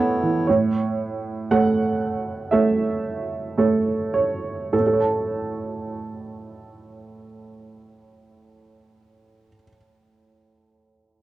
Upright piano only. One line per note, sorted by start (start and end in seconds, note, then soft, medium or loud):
0.00 0.43 A2 soft
0.00 0.23 E3 soft
0.00 0.49 B3 soft
0.00 0.49 A4 soft
0.00 0.47 C#5 soft
0.23 0.48 E3 soft
0.47 1.48 A2 soft
0.47 1.46 C#5 soft
1.51 2.48 A3 soft
1.51 2.48 A4 soft
1.51 2.48 C#5 soft
1.51 2.48 F#5 soft
2.51 3.54 A3 soft
2.51 3.54 A4 soft
2.51 3.54 C#5 soft
2.51 4.11 E5 soft
3.57 4.68 A3 soft
3.57 4.69 A4 soft
3.57 4.12 C#5 soft
4.14 4.68 C#5 soft
4.73 9.47 A2 soft
4.73 4.85 A4 soft
4.79 9.54 A3 soft
4.87 9.61 A4 soft
4.93 9.68 C#5 soft
5.00 9.75 A5 soft